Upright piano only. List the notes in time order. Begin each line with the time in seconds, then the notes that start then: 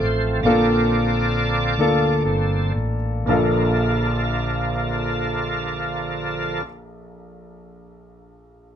Already playing: A3 C4 F4 A4
0.45 A#2 A#3 D4 F4 A4
1.79 A#3 D4 F4 A4
3.26 A#1 A#3 D4
3.31 F4 A4